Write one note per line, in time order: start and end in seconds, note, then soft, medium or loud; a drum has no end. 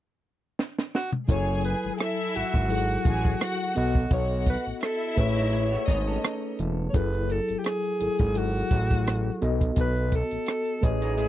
0.59 snare medium
0.78 snare medium
0.95 1.11 F#4 medium
0.95 snare medium
1.12 mid tom medium
1.28 1.75 F#1 loud
1.28 2.43 F#3 medium
1.28 2.43 E4 medium
1.28 1.95 G#4 medium
1.28 2.44 A4 medium
1.28 1.63 C#5 medium
1.28 1.95 G#5 loud
1.28 2.43 G#5 medium
1.28 kick loud
1.28 closed hi-hat medium
1.65 1.96 B4 medium
1.65 closed hi-hat medium
1.85 1.91 G#1 soft
1.94 2.03 G#4 medium
1.94 closed hi-hat medium
1.99 2.66 E4 loud
1.99 2.37 A4 medium
1.99 2.66 E5 loud
1.99 cross-stick medium
2.35 2.43 G#1 soft
2.35 3.77 F#4 medium
2.35 closed hi-hat medium
2.54 2.97 G#1 medium
2.54 kick medium
2.54 cross-stick soft
2.69 3.75 F#3 medium
2.69 3.76 E4 medium
2.69 2.99 F#4 medium
2.69 3.76 G#4 medium
2.69 3.75 A4 medium
2.69 2.99 F#5 medium
2.69 closed hi-hat medium
3.05 3.35 A1 medium
3.05 3.34 G#4 medium
3.05 3.34 G#5 loud
3.05 kick medium
3.05 closed hi-hat medium
3.25 kick medium
3.40 3.92 F#4 loud
3.40 3.91 F#5 loud
3.40 cross-stick loud
3.40 closed hi-hat medium
3.75 4.06 B1 medium
3.75 4.90 B3 medium
3.75 4.90 F#4 medium
3.75 4.10 F#4 medium
3.75 4.90 A4 medium
3.75 4.91 D#5 medium
3.75 closed hi-hat medium
3.95 kick medium
4.10 4.57 B1 medium
4.10 4.77 F#4 medium
4.10 4.45 C#5 medium
4.10 4.78 F#5 medium
4.10 kick loud
4.10 closed hi-hat medium
4.46 4.65 B4 medium
4.46 kick medium
4.46 closed hi-hat medium
4.67 4.73 A1 soft
4.81 5.84 E4 loud
4.81 5.21 A4 medium
4.81 5.84 E5 loud
4.81 cross-stick medium
4.81 closed hi-hat medium
5.16 5.77 A1 loud
5.16 6.31 A3 medium
5.16 6.31 G#4 medium
5.16 6.32 B4 medium
5.16 6.32 C#5 medium
5.16 6.60 C#5 medium
5.16 kick medium
5.16 closed hi-hat medium
5.37 5.52 F#3 medium
5.37 5.52 D#4 medium
5.37 cross-stick soft
5.53 5.71 G#3 soft
5.53 5.71 E4 medium
5.53 closed hi-hat medium
5.72 5.87 A3 medium
5.72 5.87 F#4 medium
5.87 6.18 G#1 medium
5.87 6.06 B3 soft
5.87 6.54 D#4 medium
5.87 6.06 G#4 soft
5.87 6.54 D#5 medium
5.87 kick medium
5.87 closed hi-hat medium
6.08 6.90 C#4 soft
6.08 6.90 A4 medium
6.24 cross-stick loud
6.24 closed hi-hat medium
6.59 6.89 E1 medium
6.59 closed hi-hat medium
6.90 7.80 F#3 medium
6.90 6.97 C#5 medium
6.94 7.40 F#1 loud
6.94 7.80 E4 medium
6.94 7.81 G#4 medium
6.94 7.81 A4 medium
6.94 7.33 B4 medium
6.94 kick loud
6.94 closed hi-hat medium
7.13 closed hi-hat soft
7.30 7.60 A4 medium
7.30 closed hi-hat medium
7.48 7.56 G#1 soft
7.48 closed hi-hat soft
7.59 7.67 G4 medium
7.64 8.39 G#4 medium
7.64 cross-stick medium
7.64 closed hi-hat medium
7.83 closed hi-hat soft
8.00 8.09 G#1 soft
8.00 8.29 F#3 soft
8.00 8.29 E4 soft
8.00 8.30 G#4 medium
8.00 8.30 A4 medium
8.00 closed hi-hat medium
8.19 8.63 G#1 medium
8.19 kick medium
8.19 cross-stick soft
8.19 closed hi-hat soft
8.35 9.41 F#3 medium
8.35 9.41 E4 medium
8.35 9.42 F#4 medium
8.35 9.42 G#4 medium
8.35 9.41 A4 medium
8.35 closed hi-hat medium
8.71 9.31 A1 medium
8.71 kick medium
8.71 closed hi-hat medium
8.91 kick medium
8.91 closed hi-hat soft
9.07 cross-stick medium
9.07 closed hi-hat medium
9.41 9.72 B1 medium
9.41 10.56 B3 medium
9.41 10.56 F#4 medium
9.41 10.56 A4 medium
9.41 10.57 D#5 medium
9.41 closed hi-hat medium
9.61 kick medium
9.61 closed hi-hat soft
9.76 10.23 B1 loud
9.76 kick loud
9.76 closed hi-hat medium
9.81 10.17 B4 medium
9.96 closed hi-hat soft
10.12 10.86 A4 medium
10.12 kick medium
10.12 closed hi-hat medium
10.31 10.38 A1 soft
10.31 closed hi-hat soft
10.46 cross-stick medium
10.46 closed hi-hat medium
10.65 closed hi-hat soft
10.81 11.28 A1 medium
10.81 11.28 A3 medium
10.81 11.28 G#4 medium
10.81 11.28 B4 medium
10.81 11.28 C#5 medium
10.81 11.28 D#5 medium
10.81 kick medium
10.81 closed hi-hat medium
11.02 11.18 F#3 medium
11.02 11.17 D#4 medium
11.02 cross-stick soft
11.02 closed hi-hat soft
11.17 11.28 G#3 soft
11.17 11.28 E4 medium
11.17 closed hi-hat medium